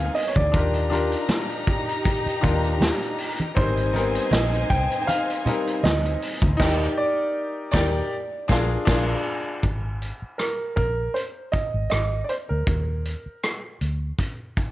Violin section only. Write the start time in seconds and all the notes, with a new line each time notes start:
Already playing: D#4 C5 G#5
0.54 D#4 G4 A#5
3.57 D#4 C5 G#5
6.60 D#4 D5 G5
7.74 D#4 D5 G5
8.50 D4 A#4 F5
8.88 D4 A#4 F5